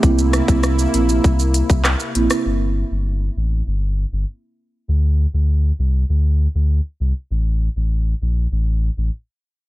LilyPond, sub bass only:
\new Staff \with { instrumentName = "Sub bass" } { \clef bass \time 4/4 \key c \mixolydian \tempo 4 = 99 c,8. c,8. bes,,8 c,8. c,8 r16 bes,,16 r16 | g,,8. g,,8. a,,8 g,,8. g,,16 r4 | d,8. d,8. c,8 d,8. d,8 r16 c,16 r16 | a,,8. a,,8. bes,,8 a,,8. a,,16 r4 | }